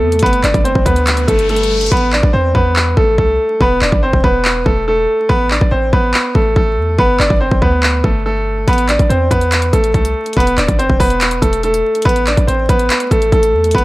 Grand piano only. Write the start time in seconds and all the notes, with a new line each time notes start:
Already playing: A3 A4
0.23 B3 B4
0.43 D4 D5
0.64 C4 C5
0.86 B3 B4
1.28 A3 A4
1.50 A3 A4
1.92 B3 B4
2.13 D4 D5
2.33 C4 C5
2.55 B3 B4
2.97 A3 A4
3.18 A3 A4
3.61 B3 B4
3.81 D4 D5
4.03 C4 C5
4.24 B3 B4
4.66 A3 A4
4.88 A3 A4
5.29 B3 B4
5.51 D4 D5
5.71 C4 C5
5.93 B3 B4
6.35 A3 A4
6.57 A3 A4
6.99 B3 B4
7.19 D4 D5
7.40 C4 C5
7.62 B3 B4
8.04 A3 A4
8.26 A3 A4
8.68 B3 B4
8.89 D4 D5
9.09 C4 C5
9.31 B3 B4
9.73 A3 A4
9.94 A3 A4
10.38 B3 B4
10.58 D4 D5
10.79 C4 C5
11.00 B3 B4
11.42 A3 A4
11.64 A3 A4
12.05 B3 B4
12.28 D4 D5
12.47 C4 C5
12.69 B3 B4
13.11 A3 A4
13.33 A3 A4
13.75 B3 B4